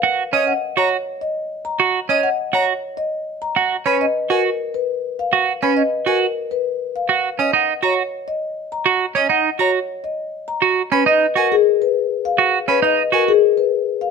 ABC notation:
X:1
M:3/4
L:1/16
Q:1/4=102
K:F#
V:1 name="Violin"
z2 d' z2 a z6 | z2 d' z2 a z6 | z2 b z2 g z6 | z2 b z2 g z6 |
z2 d' z2 a z6 | z2 d' z2 a z6 | z2 b z2 g z6 | z2 b z2 g z6 |]
V:2 name="Marimba"
z2 d f z c z2 d z2 a | z2 d f z c z2 d z2 a | z2 B d z A z2 B z2 e | z2 B d z A z2 B z2 e |
z2 d f z c z2 d z2 a | z2 d f z c z2 d z2 a | z2 B d z A G z B z2 e | z2 B d z A G z B z2 e |]
V:3 name="Clean electric guitar"
F z C z2 F z6 | F z C z2 F z6 | F z C z2 F z6 | F z C z2 F z6 |
F z C D z F z6 | F z C D z F z6 | F z C D z F z6 | F z C D z F z6 |]